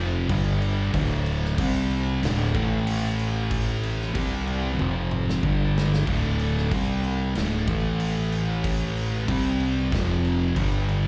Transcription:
Already playing: fingered electric bass F1, distorted electric guitar F2 C3 F3
0.29 fingered electric bass G1, distorted electric guitar G2 D3 G3, kick, crash
0.62 crash
0.94 fingered electric bass D1, distorted electric guitar D2 A2 D3, kick, crash
1.26 crash
1.45 snare
1.58 fingered electric bass C2, distorted electric guitar C3 G3 C4, kick, crash
1.91 crash
2.23 fingered electric bass D1, distorted electric guitar D2 A2 D3, snare, crash
2.55 fingered electric bass A1, distorted electric guitar A2 E3 A3, kick, crash
2.87 crash
3.19 crash
3.51 kick, crash
3.83 crash
4.02 snare
4.15 fingered electric bass C2, distorted electric guitar C3 G3 C4, kick, crash
4.47 crash
4.79 fingered electric bass F1, distorted electric guitar F2 C3 F3, high tom
5.11 mid tom
5.29 snare
5.43 fingered electric bass G1, distorted electric guitar G2 D3 G3, kick
5.78 snare
5.94 snare
6.07 fingered electric bass D1, distorted electric guitar D2 A2 D3, kick, crash
6.39 crash
6.58 snare
6.71 fingered electric bass C2, distorted electric guitar C3 G3 C4, kick, crash
7.04 crash
7.35 fingered electric bass D1, distorted electric guitar D2 A2 D3, snare, crash
7.68 fingered electric bass A1, distorted electric guitar A2 E3 A3, kick, crash
8.00 crash
8.32 crash
8.64 kick, crash
8.97 crash
9.28 fingered electric bass C2, distorted electric guitar C3 G3 C4, kick, crash
9.60 crash
9.92 fingered electric bass F1, distorted electric guitar F2 C3 F3, kick, snare, crash
10.24 crash
10.56 fingered electric bass G1, distorted electric guitar G2 D3 G3, kick, crash
10.89 crash

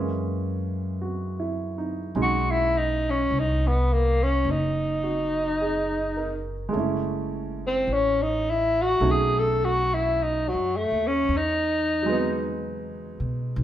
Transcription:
Already playing: upright bass F#2, upright piano E3 G#3 A#3 C#4
1.02 upright piano F#4
1.40 upright piano E4
1.78 upright piano D#4
2.15 upright bass B1, upright piano F#3 G#3 C#4 D#4
2.22 tenor saxophone F#4
2.51 tenor saxophone E4
2.78 tenor saxophone D#4
3.10 tenor saxophone C#4
3.31 upright bass C2
3.40 tenor saxophone D#4
3.67 tenor saxophone B3
3.93 tenor saxophone A#3
4.23 tenor saxophone C#4
4.45 upright bass F#1
4.51 tenor saxophone D#4
5.03 upright piano F#4
5.61 upright piano G#4
6.17 upright piano A#4
6.69 upright piano G#3 A3
6.74 upright bass F#1, upright piano C#4
6.79 upright piano E4
7.67 tenor saxophone C4
7.87 upright bass A1
7.93 tenor saxophone C#4
8.22 tenor saxophone D#4
8.50 tenor saxophone E4
8.82 tenor saxophone F#4
9.00 upright bass B1, upright piano F#3 A3 C#4 D#4
9.11 tenor saxophone G#4
9.39 tenor saxophone A4
9.64 tenor saxophone F#4
9.94 tenor saxophone E4
10.22 tenor saxophone D#4
10.49 tenor saxophone F#3
10.54 upright bass F#2
10.77 tenor saxophone A3
10.91 upright bass D#2
11.08 tenor saxophone C#4
11.28 upright bass E2
11.37 tenor saxophone D#4
12.02 upright piano F#3 G#3
12.09 upright piano B3
12.13 upright piano D#4
13.20 upright bass B2
13.56 upright bass B1

